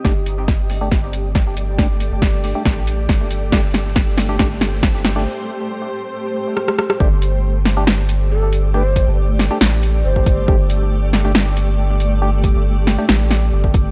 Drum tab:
HH |--x---o---x---x-|--x---o---x---x-|--x---o---x---x-|----------------|
SD |o---o---o---o---|o---o---o---o---|o-o-o-o-o-o-o-o-|------------rrrr|
BD |o---o---o---o---|o---o---o---o---|o---o---o---o---|----------------|

HH |--x---o---x---x-|--x---o---x---x-|--x---o---x---x-|--x---o---x---x-|
SD |------o-o-------|------o-o-------|------o-o-------|------o-o-o-----|
BD |o---------------|--o----------oo-|o---------------|--o----------oo-|